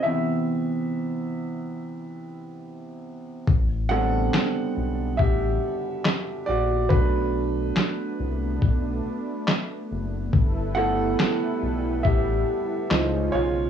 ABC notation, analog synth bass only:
X:1
M:4/4
L:1/8
Q:"Swing 16ths" 1/4=70
K:Ador
V:1 name="Analog synth bass" clef=bass
z8 | A,,,2 z B,,, A,,, z2 _B,,, | B,,,2 z C,, B,,, z2 F,,, | G,,,2 z B,,, A,,, z ^C,, B,,, |]